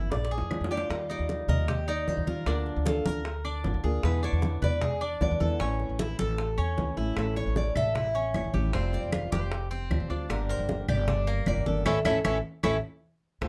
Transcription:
Already playing: G1 E3 A3 C#4 E4
0.11 A#1 D5, muted steel-string acoustic guitar stroke, high bongo, high conga
0.25 high bongo
0.31 G#4, high conga
0.38 F2, low bongo
0.50 F3 G#3 D4 F4, low bongo, high conga, claves
0.61 F2, low bongo
0.70 G#3 D4 F4 G4 D5, high conga
0.77 low bongo
0.89 D#2 D#3 G3 D#4 F4 A#4, high bongo, high conga
1.10 D#4 D5, high bongo, high conga
1.19 D#2
1.29 high bongo, high conga
1.48 D#2 A#4 D#5, high bongo, high conga, low conga
1.68 G4, muted steel-string acoustic guitar stroke, high bongo, high conga, low conga
1.88 D#4 D5, high conga
2.07 C2 D#3 G3 D#4 F4 C5, high bongo, low bongo, high conga
2.17 D#2
2.27 D#2 G3 D#4 F4 A#4, high bongo, high conga
2.46 D2 D3 A#3 D4 F4 A#4, high bongo, high conga
2.66 high bongo, high conga
2.76 D2
2.86 F4 A4, high bongo, high conga
3.05 D2 A#4, high bongo, high conga
3.25 muted steel-string acoustic guitar stroke, high bongo, high conga
3.45 D4, high conga
3.64 G1 D3 A#3 D4 F4, high bongo, low bongo, high conga
3.74 D2
3.84 D2 A#3 D4 F4 G#4, high bongo, high conga
4.03 E2 B2 D3 G#3 B3 E4 B4, high bongo, high conga
4.23 D4 C#5, high bongo, high conga
4.33 E2
4.42 high bongo, high conga
4.62 E2 B4 D5, high bongo, high conga, low conga
4.81 G#4, muted steel-string acoustic guitar stroke, high bongo, high conga, low conga
5.01 D4, high conga
5.20 D2 D3 G#3 B3 E4 D5, high bongo, low bongo, high conga
5.31 E2
5.40 E2 D3 G#3 B3 E4 A4, high bongo, high conga
5.59 A1 E3 A3 C#4 E4 C#5, high bongo, high conga
5.79 high bongo, high conga
5.89 A1
5.99 E4 A4, high bongo, high conga
6.19 A1 A4, high bongo, high conga
6.38 muted steel-string acoustic guitar stroke, high bongo, high conga
6.58 E2 C#4, high conga
6.77 C#2 E3 A3 C#4 E4, high bongo, low bongo, high conga
6.97 A1 A3 C#4 E4, high bongo, high conga
7.16 A1 E3 A3 C#4 E4 A4, high bongo, high conga, claves
7.36 C#5, high bongo, high conga
7.46 A1
7.56 D5, high bongo, high conga
7.76 A1 A4 E5, high bongo, high conga, low conga, claves
7.95 E4, muted steel-string acoustic guitar stroke, high bongo, high conga, low conga
8.15 C#4, high conga
8.34 G1 E3 A3 C#4 E4 C#5, high bongo, low bongo, high conga, claves
8.44 A1
8.53 A1 A3 C#4 E4 G4, high bongo, high conga
8.72 F1 F3 G3 C4 F4 C5, high bongo, high conga
8.93 D5, high bongo, high conga
9.03 F1
9.12 F4, high bongo, high conga, claves
9.32 F1 G4 C5, high bongo, high conga
9.51 muted steel-string acoustic guitar stroke, high bongo, high conga
9.71 C4, high conga
9.90 D2 F3 G3 C4 F4, high bongo, low bongo, high conga, claves
10.00 F1
10.09 D2 G3 C4 D4 F4, high bongo, high conga
10.29 G1 D3 G3 A#3 D4 G4 A#4, high bongo, high conga, claves
10.49 A#4 C5, high bongo, high conga
10.59 G1
10.69 high bongo, high conga
10.88 G1 G4 D5, high bongo, high conga, low conga, claves
11.08 D4, muted steel-string acoustic guitar stroke, high bongo, high conga, low conga
11.27 A#3, high conga
11.46 E1 G3 A#3 D4 G4 D5, high bongo, low bongo, high conga, claves
11.56 G1
11.66 G1 G3 A#3 D4 G4 A4, high bongo, high conga
11.86 A1 E3 A3 C#4 E4 A4 C#5 E5, low bongo, high conga, claves
12.05 A1 E3 A3 C#4 E4 A4 C#5 E5, low bongo, high conga, claves
12.24 A1 E3 A3 C#4 E4 A4 C#5 E5, low bongo, high conga, claves
12.63 A1 E3 A3 C#4 E4 A4 C#5 E5, low bongo, high conga, claves
13.41 D2 D3 A3 C4 F4, high bongo, high conga, claves

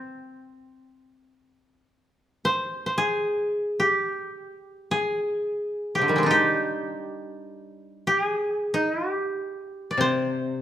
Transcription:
Already playing: C4
2.45 C5
2.86 C5
2.98 G#4
3.80 G4
4.91 G#4
5.95 C3 G4
6.02 D3
6.08 D#3 G3
6.16 G#3 C4
6.23 D4 D#4
6.31 G4
8.07 G4
8.22 G#4
8.74 D#4
9.11 G4
9.91 D5
9.97 C3 C5

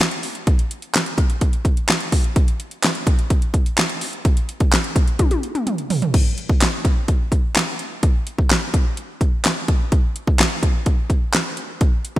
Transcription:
0.00 snare, clap, closed hi-hat
0.11 closed hi-hat
0.23 open hi-hat
0.35 closed hi-hat
0.47 kick, closed hi-hat
0.59 closed hi-hat
0.71 closed hi-hat
0.82 closed hi-hat
0.94 snare, clap, closed hi-hat
1.06 closed hi-hat
1.18 kick, closed hi-hat
1.30 closed hi-hat
1.41 kick, closed hi-hat
1.53 closed hi-hat
1.65 kick, closed hi-hat
1.77 closed hi-hat
1.89 snare, clap, closed hi-hat
2.00 closed hi-hat
2.12 kick, open hi-hat
2.24 closed hi-hat
2.36 kick, closed hi-hat
2.48 closed hi-hat
2.60 closed hi-hat
2.71 closed hi-hat
2.83 snare, clap, closed hi-hat
2.95 closed hi-hat
3.07 kick, closed hi-hat
3.19 closed hi-hat
3.30 kick, closed hi-hat
3.42 closed hi-hat
3.54 kick, closed hi-hat
3.66 closed hi-hat
3.78 snare, clap, closed hi-hat
3.89 closed hi-hat
4.01 open hi-hat
4.13 closed hi-hat
4.25 kick, closed hi-hat
4.37 closed hi-hat
4.49 closed hi-hat
4.60 kick, closed hi-hat
4.72 snare, clap, closed hi-hat
4.84 closed hi-hat
4.96 kick, closed hi-hat
5.08 closed hi-hat
5.19 kick, closed hi-hat, high tom
5.31 closed hi-hat, high tom
5.43 closed hi-hat
5.55 closed hi-hat, mid tom
5.67 closed hi-hat, mid tom
5.78 closed hi-hat
5.90 floor tom, open hi-hat
6.02 closed hi-hat, floor tom
6.14 kick, closed hi-hat, crash
6.38 closed hi-hat
6.49 kick
6.61 snare, clap, closed hi-hat
6.85 kick, closed hi-hat
7.08 kick, closed hi-hat
7.32 kick, closed hi-hat
7.56 snare, clap, closed hi-hat
7.79 closed hi-hat
8.03 kick, closed hi-hat
8.27 closed hi-hat
8.38 kick
8.50 snare, clap, closed hi-hat
8.74 kick, closed hi-hat
8.97 closed hi-hat
9.21 kick, closed hi-hat
9.45 snare, clap, closed hi-hat
9.68 kick, closed hi-hat
9.92 kick, closed hi-hat
10.16 closed hi-hat
10.27 kick
10.39 snare, clap, closed hi-hat
10.63 kick, closed hi-hat
10.86 kick, closed hi-hat
11.10 kick, closed hi-hat
11.34 snare, clap, closed hi-hat
11.57 closed hi-hat
11.81 kick, closed hi-hat
12.05 closed hi-hat

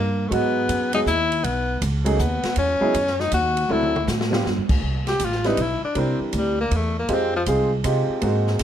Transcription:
Already playing: G2 A#3
0.28 G#2 F#3 G#3 A3 B3 D#4 F#4, kick
0.32 B3, ride
0.69 F#2, kick, hi-hat pedal, ride
0.93 F#3 G#3 B3 D#4 G#4, ride
1.06 D#2 E4, kick, hi-hat pedal
1.32 ride
1.44 B1 B3, kick, ride
1.82 C#2, kick, hi-hat pedal, ride
2.04 F#3 A3 C#4 D#4 G#4, ride
2.15 D#2 A#3 B3, kick, hi-hat pedal
2.43 muted upright bass stroke, snare, ride
2.56 E2 C#4, kick, ride
2.81 F#3 B3 D#4 E4 G#4, muted upright bass stroke
2.94 F#2, kick, hi-hat pedal, ride
3.07 snare
3.20 D#4, snare
3.32 D#2 F#4, kick, hi-hat pedal, ride
3.57 ride
3.69 D2 F#3 C4 D4 E4 A4, mid tom
3.83 mid tom
3.96 mid tom
4.07 A2, snare, hi-hat pedal
4.21 snare
4.31 G3 B3 D4 F4 G4, snare
4.45 G2, snare
4.57 F2
4.69 D2, kick, crash
4.82 C2, kick
5.07 G4, snare, ride
5.20 A1, kick, hi-hat pedal, ride
5.25 F4
5.32 snare
5.44 G3 C4 D4 D#4 E4 B4, snare, ride
5.57 B1, kick, hi-hat pedal, ride
5.61 E4
5.82 D4, muted upright bass stroke
5.95 C2 G3 C4 D4 E4 A#4, kick, ride
5.99 C4
6.20 E3, muted upright bass stroke
6.33 D2, kick, hi-hat pedal, ride
6.38 G3
6.60 A#3
6.71 E2, kick, ride
6.75 A3
6.99 A#3
7.08 F2 G#3 C4 D#4 F4 G4, kick, ride
7.13 C4
7.36 F3
7.46 C2 G#3 C4 D#4 F4 G#4, kick, hi-hat pedal, ride
7.84 C3 G#3 C4 D#4 F4 G4, kick, hi-hat pedal, ride
8.09 muted upright bass stroke
8.21 G#2 G#3 A#3 C4 D#4 F#4, kick, ride
8.47 snare
8.59 F#2, kick, snare, hi-hat pedal, ride

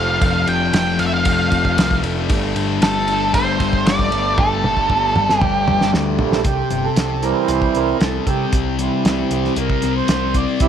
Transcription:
Already playing: F1 F2 C3 F3 A3 C4 A4 F5
0.21 F1 F2 C3 F3 D4, kick, ride
0.47 F1 G5, ride
0.72 F1 G5, snare, ride
0.99 F1 F5, ride
1.06 E5
1.14 F5
1.25 F1, kick, ride
1.52 F1, kick, ride
1.65 kick
1.77 C2, snare, ride
1.91 kick
2.03 F1 F2 C3 F3, ride
2.29 G1 G2 D3 G3, kick, ride
2.55 G1, ride
2.82 G1 A4, snare, ride
3.08 ride
3.34 G1 C5, kick, ride
3.60 G1, kick, ride
3.73 kick
3.86 G1 D5, snare, ride
3.99 kick
4.11 G1 G2 D3 G3, ride
4.37 G1 G2 D3 G3 A4, kick, high tom
4.64 G1, high tom
4.77 kick
4.89 G1, kick
5.15 G1, mid tom
5.29 snare
5.39 G1 G4, kick, mid tom
5.67 G1, mid tom
5.81 snare
5.93 D2, snare
6.19 A#1 G2 D3 G3, floor tom
6.33 snare
6.45 C2 C3 G4, kick, closed hi-hat
6.70 G1 C3, closed hi-hat
6.85 A4
6.96 C2 C4, snare, closed hi-hat
7.22 E3 G3 C4 A#4, closed hi-hat
7.48 C2 C3 C5, closed hi-hat
7.62 kick
7.75 C2 C4 A#4, closed hi-hat
8.00 C2 G3 A4, snare, closed hi-hat
8.27 C3 C4 G4, kick, closed hi-hat
8.53 C2 C3, kick, closed hi-hat
8.79 C3 E3 G3 C4, closed hi-hat
9.04 C2 C4, snare, closed hi-hat
9.31 C2 G3, closed hi-hat
9.45 snare
9.56 C2 C3 A#4, closed hi-hat
9.70 kick
9.82 C2 C4, snare, closed hi-hat
9.97 C5
10.08 C2 G3, snare, closed hi-hat
10.34 C4 D5, kick, closed hi-hat
10.60 C2 C3 E3 G3 C4 E5, kick, closed hi-hat

